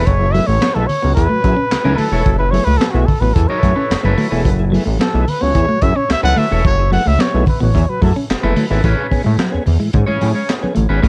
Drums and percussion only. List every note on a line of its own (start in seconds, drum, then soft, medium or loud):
0.07 kick loud
0.07 closed hi-hat medium
0.07 muted conga soft
0.21 muted conga soft
0.35 open hi-hat medium
0.62 snare loud
0.62 clap medium
0.62 closed hi-hat medium
0.62 high conga medium
0.76 muted conga soft
0.89 open hi-hat medium
0.89 low conga medium
1.17 kick medium
1.17 closed hi-hat medium
1.44 kick medium
1.44 closed hi-hat medium
1.44 high conga medium
1.71 snare loud
1.71 clap medium
1.71 closed hi-hat loud
1.71 muted conga soft
1.86 high conga medium
1.98 open hi-hat medium
1.98 low conga medium
2.26 kick loud
2.26 closed hi-hat medium
2.40 muted conga soft
2.54 open hi-hat medium
2.80 snare loud
2.80 clap loud
2.80 closed hi-hat medium
2.80 high conga medium
2.94 muted conga soft
3.08 kick medium
3.08 open hi-hat medium
3.08 low conga medium
3.36 kick medium
3.36 closed hi-hat medium
3.49 muted conga soft
3.63 kick medium
3.63 closed hi-hat medium
3.63 high conga medium
3.90 snare medium
3.90 clap medium
3.90 closed hi-hat medium
3.90 muted conga soft
4.05 muted conga soft
4.05 high conga medium
4.18 open hi-hat medium
4.18 low conga medium
4.45 kick medium
4.45 closed hi-hat medium
4.45 muted conga soft
4.59 muted conga soft
4.74 open hi-hat medium
4.99 snare loud
4.99 clap medium
4.99 closed hi-hat medium
4.99 muted conga soft
4.99 high conga medium
5.14 muted conga soft
5.28 open hi-hat medium
5.28 low conga medium
5.55 kick medium
5.55 closed hi-hat medium
5.55 muted conga soft
5.70 muted conga soft
5.81 kick medium
5.81 closed hi-hat medium
5.81 high conga medium
6.10 snare loud
6.10 clap medium
6.10 closed hi-hat medium
6.10 muted conga soft
6.25 muted conga soft
6.25 high conga medium
6.36 open hi-hat medium
6.36 low conga medium
6.65 kick loud
6.65 closed hi-hat medium
6.65 muted conga soft
6.93 open hi-hat medium
7.18 snare loud
7.18 clap medium
7.18 closed hi-hat medium
7.18 muted conga soft
7.18 high conga medium
7.46 kick medium
7.46 open hi-hat medium
7.46 low conga medium
7.74 kick medium
7.74 closed hi-hat medium
7.74 low conga medium
7.88 muted conga soft
8.02 kick medium
8.02 open hi-hat medium
8.02 high conga medium
8.30 snare loud
8.30 clap medium
8.30 closed hi-hat loud
8.44 muted conga soft
8.44 high conga medium
8.56 open hi-hat medium
8.56 low conga medium
8.84 kick loud
8.84 closed hi-hat medium
9.12 kick medium
9.12 open hi-hat medium
9.38 snare loud
9.38 clap medium
9.38 closed hi-hat medium
9.38 high conga medium
9.66 open hi-hat medium
9.66 low conga medium
9.93 kick medium
9.93 closed hi-hat loud
9.93 muted conga soft
9.93 low conga medium
10.08 muted conga soft
10.21 open hi-hat medium
10.21 high conga medium
10.49 snare medium
10.49 clap medium
10.49 closed hi-hat medium
10.49 muted conga soft
10.64 muted conga soft
10.64 high conga medium
10.76 closed hi-hat medium
10.76 low conga medium
11.03 kick loud
11.03 closed hi-hat medium
11.03 muted conga soft